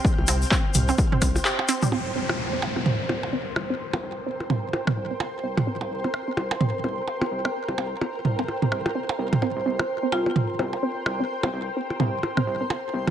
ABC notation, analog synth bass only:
X:1
M:4/4
L:1/16
Q:"Swing 16ths" 1/4=128
K:Dblyd
V:1 name="Analog synth bass" clef=bass
z C,, C,, z3 C,, z3 C,, z4 z | z C,, C,, z3 C,, z3 C,, z3 C,, z | z C,, C,, z3 C,, z3 C,, z3 C,, z | z C,, C,, z3 C,, z3 C,, z3 C,, z |
z C,, C,, z3 C,, z3 C,, z3 C,, z | z C,, C,, z3 C,, z3 C,, z3 C,, z | z C,, C,, z3 C,, z3 C,, z3 C,, z |]